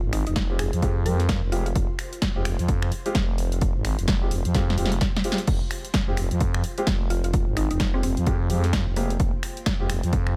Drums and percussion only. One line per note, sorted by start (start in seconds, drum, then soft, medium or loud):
0.13 finger snap medium
0.13 open hi-hat loud
0.27 closed hi-hat soft
0.36 kick loud
0.36 snare loud
0.36 closed hi-hat medium
0.59 finger snap medium
0.59 open hi-hat medium
0.73 closed hi-hat soft
0.82 kick loud
0.82 closed hi-hat medium
1.06 open hi-hat loud
1.20 snare soft
1.20 closed hi-hat soft
1.29 kick loud
1.29 snare loud
1.29 closed hi-hat medium
1.52 open hi-hat medium
1.66 closed hi-hat soft
1.76 kick loud
1.76 closed hi-hat medium
1.99 finger snap medium
1.99 open hi-hat medium
2.13 closed hi-hat medium
2.22 kick loud
2.22 snare loud
2.22 closed hi-hat medium
2.45 finger snap medium
2.45 open hi-hat medium
2.59 closed hi-hat soft
2.69 kick loud
2.69 closed hi-hat medium
2.82 finger snap medium
2.92 open hi-hat medium
3.06 closed hi-hat soft
3.15 kick loud
3.15 snare loud
3.15 closed hi-hat medium
3.38 open hi-hat medium
3.52 closed hi-hat medium
3.61 kick loud
3.61 closed hi-hat medium
3.85 finger snap medium
3.85 open hi-hat medium
3.99 closed hi-hat medium
4.08 kick loud
4.08 snare loud
4.08 closed hi-hat medium
4.31 open hi-hat medium
4.45 closed hi-hat medium
4.55 kick loud
4.55 snare medium
4.55 closed hi-hat medium
4.70 snare medium
4.78 open hi-hat medium
4.86 snare medium
4.92 closed hi-hat medium
5.01 kick loud
5.01 snare medium
5.01 closed hi-hat medium
5.16 snare medium
5.24 open hi-hat medium
5.32 snare medium
5.38 closed hi-hat medium
5.47 kick loud
5.47 closed hi-hat medium
5.47 crash medium
5.71 finger snap medium
5.71 open hi-hat loud
5.85 closed hi-hat medium
5.94 kick loud
5.94 snare loud
5.94 closed hi-hat medium
6.17 finger snap medium
6.17 open hi-hat medium
6.31 closed hi-hat soft
6.41 kick loud
6.41 closed hi-hat medium
6.54 finger snap medium
6.64 open hi-hat loud
6.78 closed hi-hat medium
6.87 kick loud
6.87 snare loud
6.87 closed hi-hat medium
7.10 open hi-hat medium
7.24 closed hi-hat medium
7.34 kick loud
7.34 closed hi-hat medium
7.57 finger snap medium
7.57 open hi-hat loud
7.71 closed hi-hat soft
7.80 kick loud
7.80 snare loud
7.80 closed hi-hat medium
8.03 open hi-hat medium
8.17 closed hi-hat soft
8.27 kick loud
8.27 closed hi-hat medium
8.50 open hi-hat loud
8.64 snare soft
8.64 closed hi-hat soft
8.73 kick loud
8.73 snare loud
8.73 closed hi-hat medium
8.96 open hi-hat medium
9.10 closed hi-hat medium
9.20 kick loud
9.20 closed hi-hat medium
9.43 finger snap medium
9.43 open hi-hat loud
9.57 closed hi-hat soft
9.66 kick loud
9.66 snare loud
9.66 closed hi-hat medium
9.90 finger snap medium
9.90 open hi-hat loud
10.03 closed hi-hat soft
10.13 kick loud
10.13 closed hi-hat medium
10.27 finger snap medium